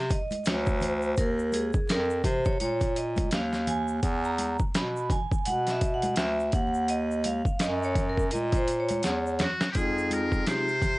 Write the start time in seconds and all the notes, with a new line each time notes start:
Already playing: C3
0.10 D#5, kick, closed hi-hat, shaker
0.31 closed hi-hat, high conga, shaker
0.45 D2 C#5, snare, closed hi-hat, shaker
0.66 kick, shaker
0.81 C5, closed hi-hat, low conga, shaker
1.02 shaker
1.17 D#2 A#4, kick, closed hi-hat, shaker
1.39 shaker
1.52 G#4, closed hi-hat, high conga, shaker
1.73 F2, kick, shaker
1.88 F2 A#4, snare, closed hi-hat, shaker
2.10 shaker
2.24 C3 C5, kick, closed hi-hat, low conga, shaker
2.45 C#5, kick, shaker
2.60 A#2 C#5, closed hi-hat, high conga, shaker
2.81 kick, closed hi-hat, shaker
2.96 D#5, closed hi-hat, shaker
3.16 kick, closed hi-hat, high conga, shaker
3.31 D#2 F5, snare, closed hi-hat, shaker
3.53 snare, shaker
3.67 G#5, closed hi-hat, low conga, shaker
3.88 shaker
4.03 E2, kick, closed hi-hat, shaker
4.24 A#5, shaker
4.38 closed hi-hat, high conga, shaker
4.59 B2, kick, shaker
4.74 B2 B5, snare, closed hi-hat, shaker
4.96 shaker
5.10 G#5, kick, closed hi-hat, low conga, shaker
5.32 kick, shaker
5.45 B2 F#5, closed hi-hat, high conga, shaker
5.67 E5, snare, closed hi-hat, shaker
5.81 kick, closed hi-hat, shaker
5.94 F#5
6.02 closed hi-hat, high conga, shaker
6.16 D2 E5, snare, closed hi-hat, shaker
6.40 shaker
6.52 D#2 F#5, kick, closed hi-hat, low conga, shaker
6.74 shaker
6.88 D#5, closed hi-hat, shaker
7.11 shaker
7.24 F5, closed hi-hat, high conga, shaker
7.45 F#2, kick, shaker
7.59 F#2 D#5, snare, closed hi-hat, shaker
7.83 C#5, shaker
7.95 kick, closed hi-hat, low conga, shaker
8.09 A#4
8.17 kick, shaker
8.31 A#2 D#5, closed hi-hat
8.35 high conga, shaker
8.52 kick, closed hi-hat, shaker
8.57 C5
8.68 closed hi-hat, shaker
8.80 C#5
8.89 closed hi-hat, high conga, shaker
9.03 E2, snare, closed hi-hat, shaker
9.27 shaker
9.39 F#4, snare, closed hi-hat, low conga, shaker
9.61 snare, shaker
9.72 F2 G#3 C4 D#4 F4 G4, kick, closed hi-hat
9.77 G#4, shaker
9.98 shaker
10.11 A#4, closed hi-hat, high conga, shaker
10.32 kick, shaker
10.46 C3 C5, snare, closed hi-hat, shaker
10.68 shaker
10.82 kick, closed hi-hat, low conga, shaker